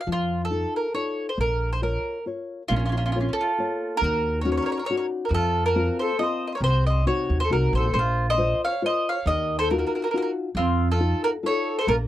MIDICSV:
0, 0, Header, 1, 5, 480
1, 0, Start_track
1, 0, Key_signature, -5, "minor"
1, 0, Tempo, 436999
1, 82, Time_signature, 3, 2, 24, 8
1, 13265, End_track
2, 0, Start_track
2, 0, Title_t, "Mandolin"
2, 0, Program_c, 0, 25
2, 7, Note_on_c, 0, 77, 68
2, 94, Note_off_c, 0, 77, 0
2, 135, Note_on_c, 0, 65, 92
2, 452, Note_off_c, 0, 65, 0
2, 492, Note_on_c, 0, 69, 76
2, 813, Note_off_c, 0, 69, 0
2, 837, Note_on_c, 0, 70, 60
2, 1034, Note_off_c, 0, 70, 0
2, 1038, Note_on_c, 0, 73, 77
2, 1381, Note_off_c, 0, 73, 0
2, 1418, Note_on_c, 0, 72, 60
2, 1517, Note_off_c, 0, 72, 0
2, 1545, Note_on_c, 0, 70, 92
2, 1877, Note_off_c, 0, 70, 0
2, 1896, Note_on_c, 0, 72, 72
2, 1997, Note_off_c, 0, 72, 0
2, 2011, Note_on_c, 0, 70, 67
2, 2458, Note_off_c, 0, 70, 0
2, 2947, Note_on_c, 0, 65, 88
2, 3023, Note_off_c, 0, 65, 0
2, 3036, Note_on_c, 0, 65, 54
2, 3124, Note_off_c, 0, 65, 0
2, 3137, Note_on_c, 0, 65, 57
2, 3195, Note_off_c, 0, 65, 0
2, 3208, Note_on_c, 0, 65, 49
2, 3254, Note_off_c, 0, 65, 0
2, 3268, Note_on_c, 0, 65, 59
2, 3345, Note_off_c, 0, 65, 0
2, 3358, Note_on_c, 0, 65, 57
2, 3414, Note_off_c, 0, 65, 0
2, 3427, Note_on_c, 0, 65, 59
2, 3509, Note_off_c, 0, 65, 0
2, 3522, Note_on_c, 0, 65, 42
2, 3625, Note_off_c, 0, 65, 0
2, 3659, Note_on_c, 0, 69, 82
2, 4364, Note_on_c, 0, 70, 106
2, 4409, Note_off_c, 0, 69, 0
2, 4844, Note_off_c, 0, 70, 0
2, 4848, Note_on_c, 0, 73, 64
2, 4950, Note_off_c, 0, 73, 0
2, 4963, Note_on_c, 0, 73, 52
2, 5012, Note_off_c, 0, 73, 0
2, 5025, Note_on_c, 0, 73, 68
2, 5104, Note_off_c, 0, 73, 0
2, 5117, Note_on_c, 0, 73, 60
2, 5172, Note_off_c, 0, 73, 0
2, 5185, Note_on_c, 0, 73, 66
2, 5251, Note_off_c, 0, 73, 0
2, 5265, Note_on_c, 0, 73, 56
2, 5328, Note_off_c, 0, 73, 0
2, 5341, Note_on_c, 0, 73, 86
2, 5444, Note_off_c, 0, 73, 0
2, 5463, Note_on_c, 0, 73, 57
2, 5550, Note_off_c, 0, 73, 0
2, 5767, Note_on_c, 0, 70, 49
2, 5841, Note_off_c, 0, 70, 0
2, 5871, Note_on_c, 0, 69, 95
2, 6210, Note_off_c, 0, 69, 0
2, 6214, Note_on_c, 0, 70, 91
2, 6553, Note_off_c, 0, 70, 0
2, 6583, Note_on_c, 0, 72, 72
2, 6787, Note_off_c, 0, 72, 0
2, 6799, Note_on_c, 0, 75, 75
2, 7098, Note_off_c, 0, 75, 0
2, 7111, Note_on_c, 0, 75, 52
2, 7153, Note_off_c, 0, 75, 0
2, 7196, Note_on_c, 0, 73, 64
2, 7239, Note_off_c, 0, 73, 0
2, 7290, Note_on_c, 0, 72, 89
2, 7524, Note_off_c, 0, 72, 0
2, 7541, Note_on_c, 0, 75, 73
2, 7763, Note_off_c, 0, 75, 0
2, 7767, Note_on_c, 0, 73, 77
2, 8111, Note_off_c, 0, 73, 0
2, 8129, Note_on_c, 0, 72, 90
2, 8236, Note_off_c, 0, 72, 0
2, 8266, Note_on_c, 0, 70, 81
2, 8499, Note_off_c, 0, 70, 0
2, 8514, Note_on_c, 0, 72, 70
2, 8704, Note_off_c, 0, 72, 0
2, 8718, Note_on_c, 0, 72, 86
2, 9068, Note_off_c, 0, 72, 0
2, 9117, Note_on_c, 0, 75, 105
2, 9453, Note_off_c, 0, 75, 0
2, 9496, Note_on_c, 0, 77, 81
2, 9690, Note_off_c, 0, 77, 0
2, 9730, Note_on_c, 0, 75, 95
2, 9973, Note_off_c, 0, 75, 0
2, 9984, Note_on_c, 0, 77, 75
2, 10185, Note_on_c, 0, 75, 92
2, 10193, Note_off_c, 0, 77, 0
2, 10518, Note_off_c, 0, 75, 0
2, 10531, Note_on_c, 0, 72, 94
2, 10636, Note_off_c, 0, 72, 0
2, 10661, Note_on_c, 0, 70, 65
2, 10736, Note_off_c, 0, 70, 0
2, 10754, Note_on_c, 0, 70, 47
2, 10827, Note_off_c, 0, 70, 0
2, 10844, Note_on_c, 0, 70, 50
2, 10915, Note_off_c, 0, 70, 0
2, 10930, Note_on_c, 0, 70, 48
2, 10992, Note_off_c, 0, 70, 0
2, 11026, Note_on_c, 0, 70, 61
2, 11078, Note_off_c, 0, 70, 0
2, 11104, Note_on_c, 0, 70, 55
2, 11158, Note_off_c, 0, 70, 0
2, 11176, Note_on_c, 0, 70, 68
2, 11217, Note_off_c, 0, 70, 0
2, 11230, Note_on_c, 0, 70, 57
2, 11311, Note_off_c, 0, 70, 0
2, 11608, Note_on_c, 0, 65, 82
2, 11944, Note_off_c, 0, 65, 0
2, 11990, Note_on_c, 0, 69, 86
2, 12321, Note_off_c, 0, 69, 0
2, 12346, Note_on_c, 0, 70, 93
2, 12405, Note_off_c, 0, 70, 0
2, 12590, Note_on_c, 0, 73, 94
2, 12920, Note_off_c, 0, 73, 0
2, 12946, Note_on_c, 0, 72, 82
2, 13042, Note_off_c, 0, 72, 0
2, 13053, Note_on_c, 0, 70, 98
2, 13121, Note_off_c, 0, 70, 0
2, 13265, End_track
3, 0, Start_track
3, 0, Title_t, "Mandolin"
3, 0, Program_c, 1, 25
3, 2970, Note_on_c, 1, 61, 65
3, 3054, Note_off_c, 1, 61, 0
3, 3069, Note_on_c, 1, 61, 45
3, 3149, Note_off_c, 1, 61, 0
3, 3176, Note_on_c, 1, 61, 53
3, 3246, Note_off_c, 1, 61, 0
3, 3261, Note_on_c, 1, 61, 43
3, 3323, Note_off_c, 1, 61, 0
3, 3357, Note_on_c, 1, 61, 56
3, 3410, Note_off_c, 1, 61, 0
3, 3434, Note_on_c, 1, 61, 42
3, 3490, Note_off_c, 1, 61, 0
3, 3513, Note_on_c, 1, 61, 38
3, 3578, Note_off_c, 1, 61, 0
3, 3610, Note_on_c, 1, 61, 39
3, 3672, Note_off_c, 1, 61, 0
3, 3743, Note_on_c, 1, 65, 67
3, 4386, Note_off_c, 1, 65, 0
3, 4438, Note_on_c, 1, 66, 76
3, 4871, Note_off_c, 1, 66, 0
3, 4891, Note_on_c, 1, 70, 62
3, 4948, Note_off_c, 1, 70, 0
3, 4961, Note_on_c, 1, 70, 44
3, 5052, Note_off_c, 1, 70, 0
3, 5080, Note_on_c, 1, 70, 65
3, 5148, Note_off_c, 1, 70, 0
3, 5161, Note_on_c, 1, 70, 56
3, 5229, Note_off_c, 1, 70, 0
3, 5245, Note_on_c, 1, 70, 61
3, 5310, Note_off_c, 1, 70, 0
3, 5328, Note_on_c, 1, 70, 50
3, 5366, Note_off_c, 1, 70, 0
3, 5379, Note_on_c, 1, 70, 46
3, 5464, Note_off_c, 1, 70, 0
3, 5479, Note_on_c, 1, 70, 45
3, 5559, Note_off_c, 1, 70, 0
3, 5812, Note_on_c, 1, 66, 53
3, 5860, Note_off_c, 1, 66, 0
3, 5885, Note_on_c, 1, 65, 64
3, 6206, Note_off_c, 1, 65, 0
3, 6237, Note_on_c, 1, 66, 65
3, 6565, Note_off_c, 1, 66, 0
3, 6608, Note_on_c, 1, 69, 68
3, 6800, Note_off_c, 1, 69, 0
3, 6841, Note_on_c, 1, 72, 61
3, 7138, Note_off_c, 1, 72, 0
3, 7166, Note_on_c, 1, 72, 44
3, 7186, Note_off_c, 1, 72, 0
3, 7221, Note_on_c, 1, 70, 62
3, 7259, Note_off_c, 1, 70, 0
3, 7318, Note_on_c, 1, 66, 66
3, 7539, Note_off_c, 1, 66, 0
3, 7579, Note_on_c, 1, 72, 55
3, 7764, Note_on_c, 1, 66, 51
3, 7768, Note_off_c, 1, 72, 0
3, 8109, Note_off_c, 1, 66, 0
3, 8175, Note_on_c, 1, 69, 65
3, 8261, Note_off_c, 1, 69, 0
3, 8268, Note_on_c, 1, 66, 49
3, 8500, Note_off_c, 1, 66, 0
3, 8538, Note_on_c, 1, 69, 67
3, 8732, Note_off_c, 1, 69, 0
3, 8775, Note_on_c, 1, 65, 84
3, 9099, Note_off_c, 1, 65, 0
3, 9121, Note_on_c, 1, 72, 72
3, 9455, Note_off_c, 1, 72, 0
3, 9502, Note_on_c, 1, 73, 79
3, 9694, Note_off_c, 1, 73, 0
3, 9733, Note_on_c, 1, 72, 47
3, 9951, Note_off_c, 1, 72, 0
3, 9987, Note_on_c, 1, 73, 67
3, 10174, Note_off_c, 1, 73, 0
3, 10197, Note_on_c, 1, 70, 81
3, 10524, Note_off_c, 1, 70, 0
3, 10541, Note_on_c, 1, 69, 78
3, 10641, Note_off_c, 1, 69, 0
3, 10655, Note_on_c, 1, 66, 53
3, 10732, Note_off_c, 1, 66, 0
3, 10745, Note_on_c, 1, 66, 42
3, 10822, Note_off_c, 1, 66, 0
3, 10836, Note_on_c, 1, 66, 53
3, 10910, Note_off_c, 1, 66, 0
3, 10939, Note_on_c, 1, 66, 43
3, 10996, Note_off_c, 1, 66, 0
3, 11009, Note_on_c, 1, 66, 57
3, 11048, Note_off_c, 1, 66, 0
3, 11061, Note_on_c, 1, 66, 43
3, 11135, Note_off_c, 1, 66, 0
3, 11162, Note_on_c, 1, 66, 45
3, 11234, Note_off_c, 1, 66, 0
3, 11250, Note_on_c, 1, 66, 35
3, 11322, Note_off_c, 1, 66, 0
3, 11614, Note_on_c, 1, 60, 70
3, 11947, Note_off_c, 1, 60, 0
3, 11991, Note_on_c, 1, 65, 68
3, 12322, Note_off_c, 1, 65, 0
3, 12352, Note_on_c, 1, 66, 76
3, 12410, Note_off_c, 1, 66, 0
3, 12607, Note_on_c, 1, 69, 76
3, 12929, Note_off_c, 1, 69, 0
3, 12971, Note_on_c, 1, 69, 81
3, 13055, Note_off_c, 1, 69, 0
3, 13061, Note_on_c, 1, 65, 71
3, 13128, Note_off_c, 1, 65, 0
3, 13265, End_track
4, 0, Start_track
4, 0, Title_t, "Nylon-string guitar"
4, 0, Program_c, 2, 24
4, 76, Note_on_c, 2, 53, 52
4, 542, Note_off_c, 2, 53, 0
4, 554, Note_on_c, 2, 63, 40
4, 566, Note_on_c, 2, 65, 36
4, 569, Note_on_c, 2, 69, 47
4, 939, Note_off_c, 2, 63, 0
4, 946, Note_off_c, 2, 69, 0
4, 947, Note_off_c, 2, 65, 0
4, 1033, Note_on_c, 2, 63, 32
4, 1038, Note_on_c, 2, 65, 29
4, 1041, Note_on_c, 2, 69, 37
4, 1419, Note_off_c, 2, 63, 0
4, 1423, Note_off_c, 2, 65, 0
4, 1423, Note_off_c, 2, 69, 0
4, 1508, Note_on_c, 2, 58, 47
4, 1981, Note_off_c, 2, 58, 0
4, 1997, Note_on_c, 2, 65, 40
4, 1998, Note_on_c, 2, 70, 33
4, 2004, Note_on_c, 2, 73, 40
4, 2387, Note_off_c, 2, 70, 0
4, 2388, Note_off_c, 2, 65, 0
4, 2391, Note_off_c, 2, 73, 0
4, 2480, Note_on_c, 2, 65, 31
4, 2485, Note_on_c, 2, 70, 27
4, 2494, Note_on_c, 2, 73, 32
4, 2872, Note_off_c, 2, 65, 0
4, 2874, Note_off_c, 2, 70, 0
4, 2880, Note_off_c, 2, 73, 0
4, 2973, Note_on_c, 2, 58, 65
4, 3442, Note_off_c, 2, 58, 0
4, 3466, Note_on_c, 2, 65, 45
4, 3468, Note_on_c, 2, 70, 41
4, 3475, Note_on_c, 2, 73, 42
4, 3847, Note_off_c, 2, 70, 0
4, 3848, Note_off_c, 2, 65, 0
4, 3852, Note_off_c, 2, 73, 0
4, 3935, Note_on_c, 2, 65, 42
4, 3949, Note_on_c, 2, 58, 35
4, 3951, Note_on_c, 2, 73, 39
4, 4319, Note_off_c, 2, 65, 0
4, 4327, Note_off_c, 2, 58, 0
4, 4327, Note_off_c, 2, 73, 0
4, 4417, Note_on_c, 2, 51, 53
4, 4879, Note_off_c, 2, 51, 0
4, 4885, Note_on_c, 2, 61, 43
4, 4890, Note_on_c, 2, 63, 41
4, 4895, Note_on_c, 2, 66, 50
4, 5269, Note_off_c, 2, 61, 0
4, 5272, Note_off_c, 2, 63, 0
4, 5274, Note_off_c, 2, 66, 0
4, 5379, Note_on_c, 2, 61, 37
4, 5381, Note_on_c, 2, 63, 33
4, 5388, Note_on_c, 2, 66, 44
4, 5756, Note_off_c, 2, 63, 0
4, 5757, Note_off_c, 2, 61, 0
4, 5758, Note_off_c, 2, 66, 0
4, 5848, Note_on_c, 2, 53, 55
4, 6308, Note_off_c, 2, 53, 0
4, 6317, Note_on_c, 2, 58, 49
4, 6322, Note_on_c, 2, 60, 43
4, 6327, Note_on_c, 2, 65, 53
4, 6702, Note_off_c, 2, 58, 0
4, 6702, Note_off_c, 2, 60, 0
4, 6703, Note_off_c, 2, 65, 0
4, 6793, Note_on_c, 2, 58, 34
4, 6797, Note_on_c, 2, 60, 32
4, 6802, Note_on_c, 2, 65, 41
4, 7179, Note_off_c, 2, 58, 0
4, 7180, Note_off_c, 2, 60, 0
4, 7184, Note_off_c, 2, 65, 0
4, 7262, Note_on_c, 2, 48, 63
4, 7738, Note_off_c, 2, 48, 0
4, 7754, Note_on_c, 2, 48, 48
4, 7760, Note_on_c, 2, 63, 44
4, 7763, Note_on_c, 2, 66, 47
4, 8145, Note_off_c, 2, 48, 0
4, 8149, Note_off_c, 2, 63, 0
4, 8149, Note_off_c, 2, 66, 0
4, 8241, Note_on_c, 2, 60, 32
4, 8249, Note_on_c, 2, 63, 30
4, 8250, Note_on_c, 2, 66, 43
4, 8632, Note_off_c, 2, 60, 0
4, 8633, Note_off_c, 2, 63, 0
4, 8636, Note_off_c, 2, 66, 0
4, 8733, Note_on_c, 2, 58, 50
4, 9193, Note_off_c, 2, 58, 0
4, 9197, Note_on_c, 2, 65, 38
4, 9207, Note_on_c, 2, 70, 38
4, 9208, Note_on_c, 2, 72, 53
4, 9587, Note_off_c, 2, 65, 0
4, 9592, Note_off_c, 2, 72, 0
4, 9593, Note_off_c, 2, 70, 0
4, 9688, Note_on_c, 2, 65, 37
4, 9692, Note_on_c, 2, 70, 37
4, 9698, Note_on_c, 2, 72, 38
4, 10071, Note_off_c, 2, 65, 0
4, 10074, Note_off_c, 2, 70, 0
4, 10075, Note_off_c, 2, 72, 0
4, 10186, Note_on_c, 2, 51, 62
4, 10640, Note_off_c, 2, 51, 0
4, 10664, Note_on_c, 2, 63, 48
4, 10665, Note_on_c, 2, 65, 44
4, 10669, Note_on_c, 2, 66, 53
4, 11038, Note_off_c, 2, 65, 0
4, 11039, Note_off_c, 2, 63, 0
4, 11042, Note_off_c, 2, 66, 0
4, 11135, Note_on_c, 2, 63, 37
4, 11139, Note_on_c, 2, 65, 33
4, 11143, Note_on_c, 2, 66, 43
4, 11511, Note_off_c, 2, 65, 0
4, 11512, Note_off_c, 2, 63, 0
4, 11515, Note_off_c, 2, 66, 0
4, 11620, Note_on_c, 2, 53, 65
4, 12073, Note_off_c, 2, 53, 0
4, 12084, Note_on_c, 2, 63, 41
4, 12088, Note_on_c, 2, 65, 42
4, 12092, Note_on_c, 2, 69, 46
4, 12467, Note_off_c, 2, 65, 0
4, 12468, Note_off_c, 2, 63, 0
4, 12471, Note_off_c, 2, 69, 0
4, 12553, Note_on_c, 2, 63, 42
4, 12555, Note_on_c, 2, 65, 36
4, 12558, Note_on_c, 2, 69, 36
4, 12941, Note_off_c, 2, 63, 0
4, 12941, Note_off_c, 2, 65, 0
4, 12944, Note_off_c, 2, 69, 0
4, 13046, Note_on_c, 2, 58, 69
4, 13265, Note_off_c, 2, 58, 0
4, 13265, End_track
5, 0, Start_track
5, 0, Title_t, "Upright bass"
5, 0, Program_c, 3, 32
5, 75, Note_on_c, 3, 41, 75
5, 699, Note_off_c, 3, 41, 0
5, 1514, Note_on_c, 3, 34, 76
5, 2145, Note_off_c, 3, 34, 0
5, 2962, Note_on_c, 3, 34, 90
5, 3593, Note_off_c, 3, 34, 0
5, 4408, Note_on_c, 3, 39, 86
5, 5030, Note_off_c, 3, 39, 0
5, 5827, Note_on_c, 3, 41, 98
5, 6453, Note_off_c, 3, 41, 0
5, 7255, Note_on_c, 3, 36, 82
5, 7745, Note_off_c, 3, 36, 0
5, 8013, Note_on_c, 3, 39, 77
5, 8220, Note_off_c, 3, 39, 0
5, 8240, Note_on_c, 3, 36, 77
5, 8477, Note_off_c, 3, 36, 0
5, 8489, Note_on_c, 3, 34, 87
5, 8699, Note_off_c, 3, 34, 0
5, 8721, Note_on_c, 3, 34, 89
5, 9349, Note_off_c, 3, 34, 0
5, 10168, Note_on_c, 3, 39, 90
5, 10788, Note_off_c, 3, 39, 0
5, 11585, Note_on_c, 3, 41, 94
5, 12213, Note_off_c, 3, 41, 0
5, 13040, Note_on_c, 3, 34, 88
5, 13265, Note_off_c, 3, 34, 0
5, 13265, End_track
0, 0, End_of_file